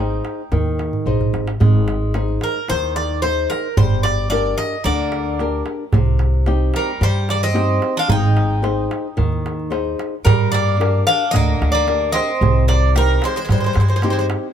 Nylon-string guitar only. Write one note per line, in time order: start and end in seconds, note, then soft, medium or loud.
0.00 0.41 D#4 soft
0.00 0.41 G#4 soft
0.00 0.41 C5 medium
0.52 1.05 D#3 medium
1.06 1.50 D#4 soft
1.06 1.50 G#4 soft
1.06 1.50 C5 soft
1.60 2.13 G#3 medium
2.14 2.58 D#4 soft
2.14 2.58 G#4 soft
2.14 2.58 C5 soft
2.69 3.22 D#3 medium
3.24 3.67 D#4 soft
3.24 3.67 G#4 soft
3.24 3.67 C5 medium
3.77 4.30 G3 medium
4.31 4.75 D4 medium
4.31 4.75 G4 soft
4.31 4.75 A#4 medium
4.85 5.38 D3 medium
5.40 5.83 D4 soft
5.40 5.83 G4 soft
5.40 5.83 A#4 medium
5.94 6.46 C3 medium
6.47 6.90 C4 medium
6.47 6.91 D#4 soft
6.47 6.91 G4 medium
7.01 7.54 G3 medium
7.54 7.98 C4 medium
7.54 7.98 D#4 soft
7.54 7.98 G4 medium
8.08 8.61 G#3 medium
8.62 9.06 D#4 soft
8.62 9.06 G#4 soft
8.62 9.07 C5 medium
9.17 9.70 D#3 medium
9.70 10.14 D#4 soft
9.70 10.14 G#4 soft
9.70 10.15 C5 soft
10.25 10.78 G3 medium
10.80 11.23 D4 soft
10.80 11.23 G4 soft
10.80 11.23 A#4 medium
11.33 11.86 D3 medium
11.87 12.30 D4 soft
11.87 12.31 G4 soft
11.87 12.31 A#4 medium
12.42 12.94 C3 medium
12.95 13.39 C4 soft
12.95 13.39 D#4 soft
12.95 13.39 G4 medium
13.50 14.02 G3 medium
14.04 14.47 C4 soft
14.04 14.47 D#4 soft
14.04 14.47 G4 medium